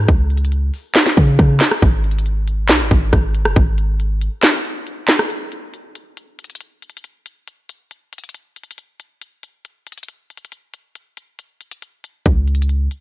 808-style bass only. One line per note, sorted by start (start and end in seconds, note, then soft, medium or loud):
0.09 0.71 C#2 loud
1.17 1.38 C#3 loud
1.39 1.60 C#3 loud
1.82 2.71 G#1 loud
2.69 2.82 B1 loud
2.80 2.90 G#1 loud
2.91 3.12 G#1 loud
3.13 3.47 G#1 loud
3.45 3.56 F#1 loud
3.56 4.29 G#1 loud
12.26 12.88 C#2 loud